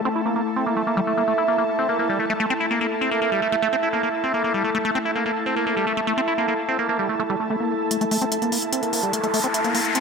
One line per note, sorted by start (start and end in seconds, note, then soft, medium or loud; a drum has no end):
0.00 7.90 A3 medium
0.00 10.00 E4 medium
0.00 10.00 A4 medium
0.00 10.00 A5 medium
0.05 0.09 C4 loud
0.15 0.21 E4 medium
0.26 0.35 A#3 medium
0.36 0.42 A#3 medium
0.56 0.65 C4 medium
0.66 0.75 A#3 medium
0.77 0.83 A3 medium
0.87 0.96 A#3 medium
0.97 1.01 G3 loud
1.07 1.13 A3 medium
1.17 1.23 A#3 medium
1.28 1.34 A3 medium
1.38 1.44 E4 medium
1.48 1.57 A#3 medium
1.58 1.64 A#3 medium
1.79 1.88 C4 medium
1.89 1.98 A#3 medium
1.99 2.08 A#3 medium
2.09 2.18 G3 medium
2.20 2.26 A3 medium
2.30 2.33 A3 loud
2.40 2.46 A3 loud
2.50 2.54 C4 loud
2.60 2.66 E4 medium
2.71 2.80 A#3 medium
2.81 2.87 A#3 medium
3.01 3.10 C4 medium
3.11 3.20 A#3 medium
3.22 3.31 A#3 medium
3.32 3.41 G3 medium
3.42 3.48 A3 medium
3.52 3.56 A3 loud
3.62 3.68 A3 loud
3.73 3.76 C4 loud
3.83 3.89 E4 medium
3.93 4.02 A#3 medium
4.03 4.09 A#3 medium
4.24 4.33 C4 medium
4.34 4.43 A#3 medium
4.44 4.53 A#3 medium
4.54 4.63 G3 medium
4.64 4.70 A3 medium
4.75 4.78 A3 loud
4.85 4.91 A3 loud
4.95 4.99 C4 loud
5.05 5.11 E4 medium
5.15 5.24 A#3 medium
5.26 5.32 A#3 medium
5.46 5.55 C4 medium
5.56 5.65 A#3 medium
5.66 5.75 A#3 medium
5.77 5.86 G3 medium
5.87 5.93 A3 medium
5.97 6.01 A3 medium
6.07 6.13 A3 loud
6.17 6.21 C4 loud
6.28 6.34 E4 medium
6.38 6.47 A#3 medium
6.48 6.54 A#3 medium
6.69 6.78 C4 medium
6.79 6.88 A#3 medium
6.89 6.98 A#3 medium
6.99 7.08 G3 medium
7.09 7.15 A3 medium
7.20 7.23 A3 medium
7.30 7.36 G3 loud
7.40 7.49 A3 medium
7.50 7.56 A3 loud
7.60 7.72 A#3 medium
7.71 7.74 A3 medium
7.91 7.97 A3 medium
7.91 10.00 A3 medium
7.91 closed hi-hat medium
7.91 riser medium
8.01 8.05 A3 loud
8.01 closed hi-hat soft
8.11 8.17 A3 loud
8.11 open hi-hat loud
8.22 8.25 C4 loud
8.22 closed hi-hat soft
8.32 8.38 E4 medium
8.32 closed hi-hat loud
8.42 8.51 A#3 medium
8.42 closed hi-hat soft
8.52 8.58 A#3 medium
8.52 open hi-hat loud
8.62 closed hi-hat soft
8.73 8.82 C4 medium
8.73 closed hi-hat medium
8.83 8.92 A#3 medium
8.83 closed hi-hat soft
8.93 9.02 A#3 medium
8.93 open hi-hat loud
9.03 9.12 G3 medium
9.03 closed hi-hat soft
9.13 9.19 A3 medium
9.13 closed hi-hat loud
9.24 9.27 A3 loud
9.24 closed hi-hat soft
9.34 9.40 A3 loud
9.34 open hi-hat loud
9.44 9.48 C4 loud
9.44 closed hi-hat soft
9.54 9.60 E4 medium
9.54 closed hi-hat loud
9.64 9.73 A#3 medium
9.64 closed hi-hat soft
9.75 9.81 A#3 medium
9.75 open hi-hat loud
9.85 closed hi-hat soft
9.95 10.00 C4 medium
9.95 closed hi-hat medium